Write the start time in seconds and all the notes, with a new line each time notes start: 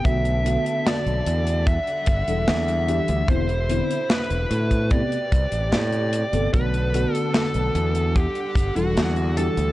Already playing: B3
0.04 B1 D3 A3 B3 F#4 A4 E5, kick, closed hi-hat
0.25 closed hi-hat
0.44 D3 A3 B3 F#4, closed hi-hat
0.66 closed hi-hat
0.86 D5, snare, closed hi-hat
1.06 B1, closed hi-hat
1.26 E2, closed hi-hat
1.47 closed hi-hat
1.66 G3 E5 F#5, kick, closed hi-hat
1.87 closed hi-hat
2.06 G1, kick, closed hi-hat
2.27 E1 E3 G3 D4 A4, closed hi-hat
2.48 E2 E5, snare, closed hi-hat
2.68 closed hi-hat
2.88 E3 G3 D4 G4, closed hi-hat
3.08 D2, closed hi-hat
3.28 E1 B2 D3 B3 C4 E4 C5, kick, closed hi-hat
3.49 closed hi-hat
3.69 D3 B3 C4 E4, closed hi-hat
3.91 closed hi-hat
4.10 B4, snare, closed hi-hat
4.30 E1, closed hi-hat
4.51 A2, closed hi-hat
4.71 kick, closed hi-hat
4.90 C3 A3 B3 G4 D5, kick, closed hi-hat
5.12 closed hi-hat
5.32 C2, kick, closed hi-hat
5.52 A1, closed hi-hat
5.72 A2 D5, snare, closed hi-hat
5.92 closed hi-hat
6.13 closed hi-hat
6.32 G1 C3 A3 B3 A4, closed hi-hat
6.52 B1 D3 A3 B3 F#4 A4 B4, kick, closed hi-hat
6.74 closed hi-hat
6.92 D3 A3 B3 F#4, closed hi-hat
7.14 A4, closed hi-hat
7.34 A4, snare, closed hi-hat
7.54 B1, closed hi-hat
7.75 E2, closed hi-hat
7.95 closed hi-hat
8.15 G3 G4 F#5, kick, closed hi-hat
8.35 closed hi-hat
8.55 G1, kick, closed hi-hat
8.76 E1 E3 G3 D4 F#4 A4, closed hi-hat
8.96 E2, snare, closed hi-hat
9.16 closed hi-hat
9.37 E3 G3 D4 G4 A4, closed hi-hat
9.57 D2, closed hi-hat